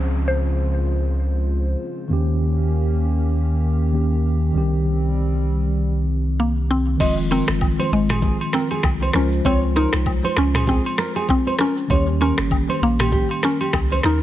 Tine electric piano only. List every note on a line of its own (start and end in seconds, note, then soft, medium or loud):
0.00 1.74 F3 medium
0.00 1.75 C4 medium
0.00 1.76 C#4 medium
0.00 1.77 G#4 medium
2.08 3.89 D#3 medium
2.08 3.90 A#3 medium
2.08 3.91 C#4 medium
2.13 3.92 G4 medium
3.93 4.51 D#3 medium
3.93 4.55 A#3 medium
3.93 4.55 C#4 medium
3.93 4.56 G4 medium
4.53 6.95 D#3 medium
4.53 6.96 G3 medium
4.53 6.96 C4 medium
4.58 6.97 G4 medium
6.97 9.09 D#3 medium
6.97 9.10 F3 medium
6.97 9.10 G#3 medium
6.97 9.11 C4 medium
7.02 9.12 F4 medium
9.13 11.55 F3 medium
9.13 11.55 G#3 medium
9.13 11.56 F4 medium
9.13 11.56 C5 medium
11.88 14.23 D#3 medium
11.88 14.23 G3 medium
11.88 14.23 A#3 medium
11.88 14.23 C#4 medium
11.93 14.23 G4 medium